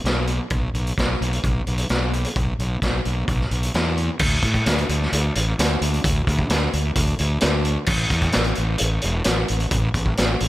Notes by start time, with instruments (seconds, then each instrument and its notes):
0.04 fingered electric bass B1, snare, closed hi-hat
0.27 closed hi-hat
0.50 fingered electric bass B1, kick, closed hi-hat
0.74 fingered electric bass B1, closed hi-hat
0.87 closed hi-hat
0.97 fingered electric bass B1, kick, snare, closed hi-hat
1.21 fingered electric bass B1, closed hi-hat
1.33 closed hi-hat
1.44 fingered electric bass B1, kick, closed hi-hat
1.67 fingered electric bass B1, closed hi-hat
1.78 closed hi-hat
1.89 fingered electric bass B1, snare, closed hi-hat
2.13 closed hi-hat
2.24 closed hi-hat
2.36 fingered electric bass B1, kick, closed hi-hat
2.59 fingered electric bass B1, closed hi-hat
2.82 fingered electric bass B1, kick, snare, closed hi-hat
3.05 fingered electric bass B1, closed hi-hat
3.28 fingered electric bass B1, kick, closed hi-hat
3.41 snare
3.51 fingered electric bass B1, closed hi-hat
3.63 closed hi-hat
3.74 fingered electric bass E2, snare, closed hi-hat
3.97 closed hi-hat
4.19 fingered electric bass D2, kick, crash
4.42 fingered electric bass A2, kick, closed hi-hat
4.54 kick, closed hi-hat
4.66 fingered electric bass D2, snare, closed hi-hat
4.78 closed hi-hat
4.89 fingered electric bass D2, closed hi-hat
5.03 snare
5.12 fingered electric bass D2, closed hi-hat
5.35 fingered electric bass A1, closed hi-hat
5.59 fingered electric bass D2, snare, closed hi-hat
5.81 fingered electric bass D2, closed hi-hat
5.93 closed hi-hat
6.04 fingered electric bass D2, kick, closed hi-hat
6.27 fingered electric bass D2, kick, closed hi-hat
6.39 kick
6.50 fingered electric bass D2, snare, closed hi-hat
6.73 fingered electric bass D2, closed hi-hat
6.95 fingered electric bass D2, kick, closed hi-hat
7.07 closed hi-hat
7.19 fingered electric bass D2, closed hi-hat
7.41 fingered electric bass D2, snare, closed hi-hat
7.65 closed hi-hat
7.86 fingered electric bass A1, kick, crash
8.10 fingered electric bass E2, kick, closed hi-hat
8.21 kick, closed hi-hat
8.32 fingered electric bass A1, snare, closed hi-hat
8.44 closed hi-hat
8.55 fingered electric bass A1, closed hi-hat
8.78 fingered electric bass A1, closed hi-hat
9.01 fingered electric bass E1, closed hi-hat
9.24 fingered electric bass A1, snare, closed hi-hat
9.48 fingered electric bass A1, closed hi-hat
9.60 closed hi-hat
9.71 fingered electric bass A1, kick, closed hi-hat
9.94 fingered electric bass A1, kick, closed hi-hat
10.06 kick
10.17 fingered electric bass A1, snare, closed hi-hat
10.40 fingered electric bass A1, closed hi-hat